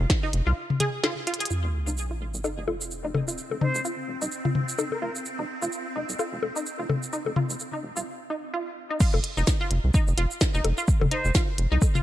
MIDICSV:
0, 0, Header, 1, 7, 480
1, 0, Start_track
1, 0, Tempo, 468750
1, 1540, Time_signature, 4, 2, 24, 8
1, 12317, End_track
2, 0, Start_track
2, 0, Title_t, "Flute"
2, 0, Program_c, 0, 73
2, 3701, Note_on_c, 0, 72, 85
2, 3889, Note_off_c, 0, 72, 0
2, 5038, Note_on_c, 0, 70, 81
2, 5104, Note_off_c, 0, 70, 0
2, 5140, Note_on_c, 0, 70, 71
2, 5229, Note_off_c, 0, 70, 0
2, 11381, Note_on_c, 0, 72, 91
2, 11569, Note_off_c, 0, 72, 0
2, 12317, End_track
3, 0, Start_track
3, 0, Title_t, "Synth pluck"
3, 0, Program_c, 1, 84
3, 239, Note_on_c, 1, 63, 82
3, 267, Note_off_c, 1, 63, 0
3, 478, Note_on_c, 1, 65, 76
3, 499, Note_off_c, 1, 65, 0
3, 821, Note_on_c, 1, 68, 100
3, 859, Note_off_c, 1, 68, 0
3, 1060, Note_on_c, 1, 65, 86
3, 1098, Note_off_c, 1, 65, 0
3, 1300, Note_on_c, 1, 65, 82
3, 1324, Note_off_c, 1, 65, 0
3, 1438, Note_on_c, 1, 68, 77
3, 1467, Note_off_c, 1, 68, 0
3, 1541, Note_on_c, 1, 65, 75
3, 1564, Note_off_c, 1, 65, 0
3, 1918, Note_on_c, 1, 63, 70
3, 1947, Note_off_c, 1, 63, 0
3, 2158, Note_on_c, 1, 65, 74
3, 2179, Note_off_c, 1, 65, 0
3, 2500, Note_on_c, 1, 63, 80
3, 2539, Note_off_c, 1, 63, 0
3, 2741, Note_on_c, 1, 65, 71
3, 2764, Note_off_c, 1, 65, 0
3, 3118, Note_on_c, 1, 63, 74
3, 3147, Note_off_c, 1, 63, 0
3, 3358, Note_on_c, 1, 65, 73
3, 3378, Note_off_c, 1, 65, 0
3, 3700, Note_on_c, 1, 63, 72
3, 3739, Note_off_c, 1, 63, 0
3, 3940, Note_on_c, 1, 65, 82
3, 3963, Note_off_c, 1, 65, 0
3, 4319, Note_on_c, 1, 63, 73
3, 4347, Note_off_c, 1, 63, 0
3, 4558, Note_on_c, 1, 65, 75
3, 4578, Note_off_c, 1, 65, 0
3, 4900, Note_on_c, 1, 63, 78
3, 4939, Note_off_c, 1, 63, 0
3, 5141, Note_on_c, 1, 65, 79
3, 5164, Note_off_c, 1, 65, 0
3, 5519, Note_on_c, 1, 63, 71
3, 5547, Note_off_c, 1, 63, 0
3, 5758, Note_on_c, 1, 65, 72
3, 5778, Note_off_c, 1, 65, 0
3, 6100, Note_on_c, 1, 63, 74
3, 6139, Note_off_c, 1, 63, 0
3, 6340, Note_on_c, 1, 65, 79
3, 6363, Note_off_c, 1, 65, 0
3, 6718, Note_on_c, 1, 63, 69
3, 6747, Note_off_c, 1, 63, 0
3, 6958, Note_on_c, 1, 65, 72
3, 6978, Note_off_c, 1, 65, 0
3, 7301, Note_on_c, 1, 63, 80
3, 7339, Note_off_c, 1, 63, 0
3, 7541, Note_on_c, 1, 65, 75
3, 7564, Note_off_c, 1, 65, 0
3, 7918, Note_on_c, 1, 63, 75
3, 7947, Note_off_c, 1, 63, 0
3, 8158, Note_on_c, 1, 65, 72
3, 8178, Note_off_c, 1, 65, 0
3, 8501, Note_on_c, 1, 63, 73
3, 8539, Note_off_c, 1, 63, 0
3, 8741, Note_on_c, 1, 65, 83
3, 8764, Note_off_c, 1, 65, 0
3, 9118, Note_on_c, 1, 63, 70
3, 9147, Note_off_c, 1, 63, 0
3, 9221, Note_on_c, 1, 65, 81
3, 9244, Note_off_c, 1, 65, 0
3, 9598, Note_on_c, 1, 63, 72
3, 9627, Note_off_c, 1, 63, 0
3, 9838, Note_on_c, 1, 65, 77
3, 9859, Note_off_c, 1, 65, 0
3, 10181, Note_on_c, 1, 63, 89
3, 10219, Note_off_c, 1, 63, 0
3, 10420, Note_on_c, 1, 65, 79
3, 10443, Note_off_c, 1, 65, 0
3, 10798, Note_on_c, 1, 63, 81
3, 10827, Note_off_c, 1, 63, 0
3, 11038, Note_on_c, 1, 65, 74
3, 11058, Note_off_c, 1, 65, 0
3, 11381, Note_on_c, 1, 63, 78
3, 11419, Note_off_c, 1, 63, 0
3, 11620, Note_on_c, 1, 65, 86
3, 11643, Note_off_c, 1, 65, 0
3, 11998, Note_on_c, 1, 63, 82
3, 12027, Note_off_c, 1, 63, 0
3, 12238, Note_on_c, 1, 65, 78
3, 12259, Note_off_c, 1, 65, 0
3, 12317, End_track
4, 0, Start_track
4, 0, Title_t, "Synth drone"
4, 0, Program_c, 2, 95
4, 1539, Note_on_c, 2, 60, 76
4, 8260, Note_off_c, 2, 60, 0
4, 12317, End_track
5, 0, Start_track
5, 0, Title_t, "Analog synth bass"
5, 0, Program_c, 3, 38
5, 340, Note_on_c, 3, 29, 84
5, 430, Note_off_c, 3, 29, 0
5, 478, Note_on_c, 3, 36, 77
5, 545, Note_off_c, 3, 36, 0
5, 1678, Note_on_c, 3, 29, 93
5, 1745, Note_off_c, 3, 29, 0
5, 1919, Note_on_c, 3, 29, 90
5, 1985, Note_off_c, 3, 29, 0
5, 2260, Note_on_c, 3, 29, 80
5, 2350, Note_off_c, 3, 29, 0
5, 2398, Note_on_c, 3, 36, 76
5, 2465, Note_off_c, 3, 36, 0
5, 2638, Note_on_c, 3, 29, 92
5, 2705, Note_off_c, 3, 29, 0
5, 2741, Note_on_c, 3, 29, 87
5, 2830, Note_off_c, 3, 29, 0
5, 3118, Note_on_c, 3, 29, 90
5, 3185, Note_off_c, 3, 29, 0
5, 3220, Note_on_c, 3, 29, 93
5, 3310, Note_off_c, 3, 29, 0
5, 3598, Note_on_c, 3, 29, 90
5, 3665, Note_off_c, 3, 29, 0
5, 3838, Note_on_c, 3, 29, 96
5, 3905, Note_off_c, 3, 29, 0
5, 4180, Note_on_c, 3, 29, 79
5, 4270, Note_off_c, 3, 29, 0
5, 4318, Note_on_c, 3, 36, 73
5, 4385, Note_off_c, 3, 36, 0
5, 4660, Note_on_c, 3, 32, 81
5, 4750, Note_off_c, 3, 32, 0
5, 5140, Note_on_c, 3, 29, 78
5, 5230, Note_off_c, 3, 29, 0
5, 5518, Note_on_c, 3, 29, 94
5, 5585, Note_off_c, 3, 29, 0
5, 5758, Note_on_c, 3, 29, 94
5, 5825, Note_off_c, 3, 29, 0
5, 6101, Note_on_c, 3, 29, 80
5, 6190, Note_off_c, 3, 29, 0
5, 6238, Note_on_c, 3, 36, 74
5, 6305, Note_off_c, 3, 36, 0
5, 6478, Note_on_c, 3, 29, 95
5, 6545, Note_off_c, 3, 29, 0
5, 6581, Note_on_c, 3, 29, 90
5, 6670, Note_off_c, 3, 29, 0
5, 6958, Note_on_c, 3, 29, 94
5, 7025, Note_off_c, 3, 29, 0
5, 7060, Note_on_c, 3, 29, 96
5, 7150, Note_off_c, 3, 29, 0
5, 7438, Note_on_c, 3, 29, 94
5, 7505, Note_off_c, 3, 29, 0
5, 7678, Note_on_c, 3, 29, 93
5, 7745, Note_off_c, 3, 29, 0
5, 8021, Note_on_c, 3, 29, 82
5, 8111, Note_off_c, 3, 29, 0
5, 8158, Note_on_c, 3, 36, 71
5, 8225, Note_off_c, 3, 36, 0
5, 9358, Note_on_c, 3, 29, 99
5, 9425, Note_off_c, 3, 29, 0
5, 9598, Note_on_c, 3, 29, 101
5, 9665, Note_off_c, 3, 29, 0
5, 9940, Note_on_c, 3, 29, 85
5, 10030, Note_off_c, 3, 29, 0
5, 10078, Note_on_c, 3, 36, 78
5, 10145, Note_off_c, 3, 36, 0
5, 10318, Note_on_c, 3, 29, 98
5, 10385, Note_off_c, 3, 29, 0
5, 10420, Note_on_c, 3, 29, 97
5, 10510, Note_off_c, 3, 29, 0
5, 10798, Note_on_c, 3, 29, 97
5, 10865, Note_off_c, 3, 29, 0
5, 10900, Note_on_c, 3, 29, 104
5, 10990, Note_off_c, 3, 29, 0
5, 11278, Note_on_c, 3, 29, 102
5, 11345, Note_off_c, 3, 29, 0
5, 11518, Note_on_c, 3, 29, 98
5, 11585, Note_off_c, 3, 29, 0
5, 11862, Note_on_c, 3, 29, 80
5, 11951, Note_off_c, 3, 29, 0
5, 11998, Note_on_c, 3, 36, 78
5, 12065, Note_off_c, 3, 36, 0
5, 12317, End_track
6, 0, Start_track
6, 0, Title_t, "Sub drop"
6, 0, Program_c, 4, 103
6, 1541, Note_on_c, 4, 60, 66
6, 3461, Note_off_c, 4, 60, 0
6, 12317, End_track
7, 0, Start_track
7, 0, Title_t, "Drums"
7, 101, Note_on_c, 9, 36, 120
7, 101, Note_on_c, 9, 38, 96
7, 203, Note_off_c, 9, 36, 0
7, 203, Note_off_c, 9, 38, 0
7, 341, Note_on_c, 9, 42, 88
7, 443, Note_off_c, 9, 42, 0
7, 718, Note_on_c, 9, 47, 77
7, 820, Note_off_c, 9, 47, 0
7, 820, Note_on_c, 9, 42, 91
7, 821, Note_on_c, 9, 47, 76
7, 923, Note_off_c, 9, 42, 0
7, 923, Note_off_c, 9, 47, 0
7, 1061, Note_on_c, 9, 38, 89
7, 1061, Note_on_c, 9, 61, 72
7, 1163, Note_off_c, 9, 38, 0
7, 1163, Note_off_c, 9, 61, 0
7, 1300, Note_on_c, 9, 42, 54
7, 1369, Note_off_c, 9, 42, 0
7, 1369, Note_on_c, 9, 42, 65
7, 1438, Note_off_c, 9, 42, 0
7, 1438, Note_on_c, 9, 42, 76
7, 1490, Note_off_c, 9, 42, 0
7, 1490, Note_on_c, 9, 42, 82
7, 1541, Note_on_c, 9, 82, 40
7, 1592, Note_off_c, 9, 42, 0
7, 1643, Note_off_c, 9, 82, 0
7, 1918, Note_on_c, 9, 82, 51
7, 2020, Note_off_c, 9, 82, 0
7, 2020, Note_on_c, 9, 82, 41
7, 2123, Note_off_c, 9, 82, 0
7, 2398, Note_on_c, 9, 82, 46
7, 2500, Note_off_c, 9, 82, 0
7, 2501, Note_on_c, 9, 61, 49
7, 2501, Note_on_c, 9, 82, 37
7, 2603, Note_off_c, 9, 61, 0
7, 2603, Note_off_c, 9, 82, 0
7, 2740, Note_on_c, 9, 61, 66
7, 2842, Note_off_c, 9, 61, 0
7, 2878, Note_on_c, 9, 82, 48
7, 2980, Note_off_c, 9, 82, 0
7, 2981, Note_on_c, 9, 82, 39
7, 3083, Note_off_c, 9, 82, 0
7, 3220, Note_on_c, 9, 47, 74
7, 3220, Note_on_c, 9, 61, 50
7, 3323, Note_off_c, 9, 47, 0
7, 3323, Note_off_c, 9, 61, 0
7, 3358, Note_on_c, 9, 82, 50
7, 3461, Note_off_c, 9, 82, 0
7, 3461, Note_on_c, 9, 82, 36
7, 3563, Note_off_c, 9, 82, 0
7, 3598, Note_on_c, 9, 61, 52
7, 3700, Note_off_c, 9, 61, 0
7, 3700, Note_on_c, 9, 47, 87
7, 3802, Note_off_c, 9, 47, 0
7, 3839, Note_on_c, 9, 82, 50
7, 3941, Note_off_c, 9, 82, 0
7, 3941, Note_on_c, 9, 82, 41
7, 4043, Note_off_c, 9, 82, 0
7, 4319, Note_on_c, 9, 82, 46
7, 4421, Note_off_c, 9, 82, 0
7, 4421, Note_on_c, 9, 82, 36
7, 4523, Note_off_c, 9, 82, 0
7, 4558, Note_on_c, 9, 47, 75
7, 4660, Note_off_c, 9, 47, 0
7, 4660, Note_on_c, 9, 47, 75
7, 4763, Note_off_c, 9, 47, 0
7, 4798, Note_on_c, 9, 82, 47
7, 4900, Note_on_c, 9, 61, 71
7, 4901, Note_off_c, 9, 82, 0
7, 4901, Note_on_c, 9, 82, 39
7, 5003, Note_off_c, 9, 61, 0
7, 5004, Note_off_c, 9, 82, 0
7, 5038, Note_on_c, 9, 61, 51
7, 5140, Note_off_c, 9, 61, 0
7, 5279, Note_on_c, 9, 82, 48
7, 5381, Note_off_c, 9, 82, 0
7, 5381, Note_on_c, 9, 82, 39
7, 5483, Note_off_c, 9, 82, 0
7, 5759, Note_on_c, 9, 82, 49
7, 5861, Note_off_c, 9, 82, 0
7, 5861, Note_on_c, 9, 82, 38
7, 5964, Note_off_c, 9, 82, 0
7, 6239, Note_on_c, 9, 82, 45
7, 6341, Note_off_c, 9, 82, 0
7, 6341, Note_on_c, 9, 61, 51
7, 6341, Note_on_c, 9, 82, 38
7, 6443, Note_off_c, 9, 61, 0
7, 6443, Note_off_c, 9, 82, 0
7, 6580, Note_on_c, 9, 61, 69
7, 6683, Note_off_c, 9, 61, 0
7, 6719, Note_on_c, 9, 82, 46
7, 6821, Note_off_c, 9, 82, 0
7, 6821, Note_on_c, 9, 82, 36
7, 6923, Note_off_c, 9, 82, 0
7, 7060, Note_on_c, 9, 47, 77
7, 7060, Note_on_c, 9, 61, 51
7, 7163, Note_off_c, 9, 47, 0
7, 7163, Note_off_c, 9, 61, 0
7, 7198, Note_on_c, 9, 82, 48
7, 7300, Note_off_c, 9, 82, 0
7, 7300, Note_on_c, 9, 82, 37
7, 7402, Note_off_c, 9, 82, 0
7, 7437, Note_on_c, 9, 61, 54
7, 7539, Note_on_c, 9, 47, 84
7, 7540, Note_off_c, 9, 61, 0
7, 7642, Note_off_c, 9, 47, 0
7, 7678, Note_on_c, 9, 82, 47
7, 7780, Note_off_c, 9, 82, 0
7, 7780, Note_on_c, 9, 82, 37
7, 7882, Note_off_c, 9, 82, 0
7, 8157, Note_on_c, 9, 82, 44
7, 8260, Note_off_c, 9, 82, 0
7, 9220, Note_on_c, 9, 36, 112
7, 9220, Note_on_c, 9, 49, 103
7, 9220, Note_on_c, 9, 82, 66
7, 9322, Note_off_c, 9, 49, 0
7, 9322, Note_off_c, 9, 82, 0
7, 9323, Note_off_c, 9, 36, 0
7, 9357, Note_on_c, 9, 61, 79
7, 9460, Note_off_c, 9, 61, 0
7, 9460, Note_on_c, 9, 42, 90
7, 9562, Note_off_c, 9, 42, 0
7, 9598, Note_on_c, 9, 82, 30
7, 9700, Note_off_c, 9, 82, 0
7, 9700, Note_on_c, 9, 36, 119
7, 9700, Note_on_c, 9, 38, 98
7, 9700, Note_on_c, 9, 82, 68
7, 9802, Note_off_c, 9, 38, 0
7, 9802, Note_off_c, 9, 82, 0
7, 9803, Note_off_c, 9, 36, 0
7, 9940, Note_on_c, 9, 42, 95
7, 10042, Note_off_c, 9, 42, 0
7, 10180, Note_on_c, 9, 36, 124
7, 10180, Note_on_c, 9, 82, 63
7, 10282, Note_off_c, 9, 82, 0
7, 10283, Note_off_c, 9, 36, 0
7, 10318, Note_on_c, 9, 82, 30
7, 10420, Note_off_c, 9, 82, 0
7, 10420, Note_on_c, 9, 42, 96
7, 10523, Note_off_c, 9, 42, 0
7, 10558, Note_on_c, 9, 82, 43
7, 10660, Note_off_c, 9, 82, 0
7, 10660, Note_on_c, 9, 38, 95
7, 10660, Note_on_c, 9, 82, 67
7, 10661, Note_on_c, 9, 36, 110
7, 10763, Note_off_c, 9, 36, 0
7, 10763, Note_off_c, 9, 38, 0
7, 10763, Note_off_c, 9, 82, 0
7, 10798, Note_on_c, 9, 82, 29
7, 10900, Note_off_c, 9, 82, 0
7, 10900, Note_on_c, 9, 61, 76
7, 10901, Note_on_c, 9, 42, 94
7, 11003, Note_off_c, 9, 42, 0
7, 11003, Note_off_c, 9, 61, 0
7, 11038, Note_on_c, 9, 82, 45
7, 11141, Note_off_c, 9, 82, 0
7, 11141, Note_on_c, 9, 36, 123
7, 11141, Note_on_c, 9, 82, 62
7, 11243, Note_off_c, 9, 36, 0
7, 11243, Note_off_c, 9, 82, 0
7, 11278, Note_on_c, 9, 47, 87
7, 11278, Note_on_c, 9, 61, 82
7, 11380, Note_off_c, 9, 47, 0
7, 11380, Note_off_c, 9, 61, 0
7, 11381, Note_on_c, 9, 42, 91
7, 11484, Note_off_c, 9, 42, 0
7, 11519, Note_on_c, 9, 82, 31
7, 11621, Note_off_c, 9, 82, 0
7, 11621, Note_on_c, 9, 36, 127
7, 11621, Note_on_c, 9, 38, 101
7, 11621, Note_on_c, 9, 82, 66
7, 11723, Note_off_c, 9, 36, 0
7, 11724, Note_off_c, 9, 38, 0
7, 11724, Note_off_c, 9, 82, 0
7, 11861, Note_on_c, 9, 42, 100
7, 11963, Note_off_c, 9, 42, 0
7, 12101, Note_on_c, 9, 36, 127
7, 12101, Note_on_c, 9, 61, 55
7, 12101, Note_on_c, 9, 82, 65
7, 12203, Note_off_c, 9, 36, 0
7, 12203, Note_off_c, 9, 61, 0
7, 12203, Note_off_c, 9, 82, 0
7, 12238, Note_on_c, 9, 47, 80
7, 12239, Note_on_c, 9, 82, 29
7, 12317, Note_off_c, 9, 47, 0
7, 12317, Note_off_c, 9, 82, 0
7, 12317, End_track
0, 0, End_of_file